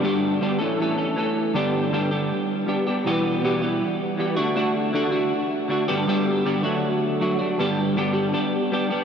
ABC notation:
X:1
M:4/4
L:1/8
Q:1/4=159
K:Glyd
V:1 name="Clean electric guitar"
[G,,D,G,B,DG]2 [G,,D,G,B,DG] [A,,E,A,CA] [E,A,CA] [A,CA] [E,A,CA]2 | [G,,D,G,B,DG]2 [G,,D,G,B,DG] [G,B,DG]3 [G,B,DG] [G,B,DG] | [E,,B,,E,G,B,G]2 [E,,B,,E,G,B,G] [E,G,B,G]3 [E,G,B,G] [D,A,DF] | [D,A,DF]2 [D,A,DF] [A,DF]3 [D,A,DF] [G,,D,G,B,DG] |
[G,,D,G,B,DG]2 [G,,D,G,B,DG] [D,F,A,DF]3 [F,A,DF] [A,DF] | [G,,D,G,B,DG]2 [G,,D,G,B,DG] [G,B,DG] [G,B,DG]2 [G,B,DG] [G,B,DG] |]